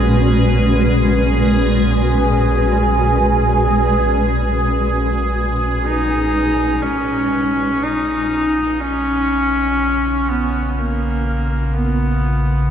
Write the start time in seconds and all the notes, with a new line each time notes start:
Already playing: A#1 A#2 G#3 C#4 F#4 G#4 B4
5.86 D#4
6.82 A#1 C#3 C#4 F4
7.83 D#4
8.80 C#4
10.30 B3
10.68 B3
10.79 A#3
11.74 B3